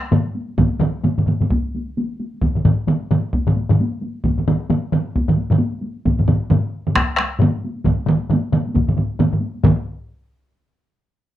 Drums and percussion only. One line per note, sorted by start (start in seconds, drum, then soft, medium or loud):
0.03 taiko high soft
0.11 taiko low-mid loud
0.11 taiko mid loud
0.11 taiko high medium
0.25 taiko high soft
0.35 taiko high medium
0.48 taiko high soft
0.58 taiko loud
0.58 taiko low-mid medium
0.58 taiko mid loud
0.58 taiko high medium
0.80 taiko low-mid loud
0.80 taiko mid loud
0.80 taiko high medium
0.95 taiko high soft
1.03 taiko low-mid medium
1.03 taiko mid medium
1.03 taiko high medium
1.18 taiko low-mid medium
1.18 taiko mid medium
1.18 taiko high soft
1.26 taiko low-mid medium
1.26 taiko mid medium
1.26 taiko high soft
1.41 taiko low-mid medium
1.41 taiko mid medium
1.41 taiko high soft
1.50 taiko loud
1.50 taiko high medium
1.66 taiko high soft
1.75 taiko high medium
1.88 taiko high soft
1.98 taiko high medium
2.11 taiko high soft
2.20 taiko high soft
2.34 taiko high soft
2.42 taiko loud
2.42 taiko low-mid medium
2.42 taiko mid medium
2.42 taiko high medium
2.55 taiko low-mid medium
2.55 taiko mid medium
2.55 taiko high soft
2.65 taiko low-mid loud
2.65 taiko mid loud
2.65 taiko high soft
2.87 taiko low-mid medium
2.87 taiko mid medium
2.87 taiko high medium
3.11 taiko low-mid medium
3.11 taiko mid loud
3.11 taiko high soft
3.33 taiko medium
3.33 taiko high medium
3.47 taiko low-mid medium
3.47 taiko mid medium
3.57 taiko high medium
3.69 taiko low-mid loud
3.69 taiko mid medium
3.80 taiko high medium
3.93 taiko high soft
4.01 taiko high medium
4.15 taiko high soft
4.24 taiko medium
4.24 taiko low-mid medium
4.24 taiko mid medium
4.24 taiko high medium
4.37 taiko low-mid medium
4.37 taiko mid medium
4.37 taiko high soft
4.48 taiko low-mid loud
4.48 taiko mid loud
4.48 taiko high soft
4.61 taiko high soft
4.69 taiko low-mid loud
4.69 taiko mid medium
4.69 taiko high medium
4.84 taiko high soft
4.92 taiko low-mid loud
4.92 taiko mid loud
4.92 taiko high soft
5.15 taiko loud
5.15 taiko high medium
5.28 taiko low-mid medium
5.28 taiko mid medium
5.37 taiko high medium
5.51 taiko low-mid medium
5.51 taiko mid loud
5.51 taiko high soft
5.59 taiko high medium
5.72 taiko high soft
5.82 taiko high medium
5.96 taiko high soft
6.05 taiko loud
6.05 taiko low-mid medium
6.05 taiko mid medium
6.05 taiko high medium
6.19 taiko low-mid medium
6.19 taiko mid medium
6.19 taiko high soft
6.28 taiko low-mid loud
6.28 taiko mid loud
6.28 taiko high soft
6.50 taiko low-mid medium
6.50 taiko mid loud
6.50 taiko high medium
6.64 taiko high soft
6.87 taiko low-mid medium
6.87 taiko mid medium
6.95 taiko rim medium
6.95 taiko loud
6.95 taiko high medium
7.17 taiko rim medium
7.17 taiko high medium
7.40 taiko low-mid loud
7.40 taiko mid loud
7.40 taiko high medium
7.56 taiko high soft
7.64 taiko high medium
7.77 taiko high soft
7.85 taiko medium
7.85 taiko low-mid medium
7.85 taiko mid loud
7.85 taiko high medium
7.99 taiko high soft
8.06 taiko low-mid loud
8.06 taiko mid loud
8.06 taiko high medium
8.23 taiko high soft
8.30 taiko low-mid medium
8.30 taiko mid loud
8.30 taiko high medium
8.45 taiko high soft
8.52 taiko low-mid medium
8.52 taiko mid loud
8.52 taiko high medium
8.67 taiko high medium
8.75 taiko medium
8.75 taiko low-mid medium
8.75 taiko mid medium
8.75 taiko high medium
8.88 taiko low-mid medium
8.88 taiko mid medium
8.88 taiko high soft
8.97 taiko low-mid medium
8.97 taiko mid medium
8.97 taiko high medium
9.11 taiko high soft
9.19 taiko low-mid loud
9.19 taiko mid loud
9.19 taiko high medium
9.33 taiko low-mid medium
9.33 taiko mid medium
9.33 taiko high soft
9.41 taiko high medium
9.55 taiko high soft
9.63 taiko medium
9.63 taiko low-mid loud
9.63 taiko mid loud
9.63 taiko high medium